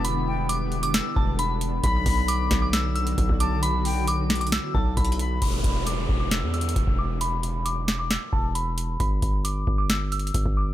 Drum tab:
CC |------------------------------------------------------------------------------------------------|------------------------------------------------------------------------------------------------|------------------------------------------------------------------------------------------------|x-----------------------------------------------------------------------------------------------|
HH |x-----------------------x-----------x-----x-----x-----------------------x-----------x-----------|x-----------o-----------x-----------x-----------x-----------x-----x-----x-----------x-----------|x-----------o-----------x-----------x--x--x--x--x-----------------------x---x---x---x-----------|x-----------x-----------x-----------------------x-----------x---x---x---x-----------------------|
SD |------------------------------------------------o-----------------------------------------------|------------------------------------o-----------o-----------------------------------------------|------------------------------------o-----------o-----------------------------------------------|------------------------------------------------o-----------------------------------------------|
BD |------------------------------------------------------------o-----------------------------------|o-----------o-----------------------o-----------------------------------o-----o-----------------|------------------------------------------------------------o-----------o-----------------------|o-----------o-----------------------o-----------------------------------o-----o-----------------|

CC |------------------------------------------------------------------------------------------------|------------------------------------------------------------------------------------------------|
HH |x-----------x-----------x-----------------------x-----------------------x-----------x-----------|x-----------x-----------x-----------------------x-----------x---x---x---x-----------------------|
SD |------------------------------------o-----------o-----------------------------------------------|------------------------------------------------o-----------------------------------------------|
BD |------------------------------------------------------------o-----------------------------------|o-----------o-----------------------o-----------------------------------o-----o-----------------|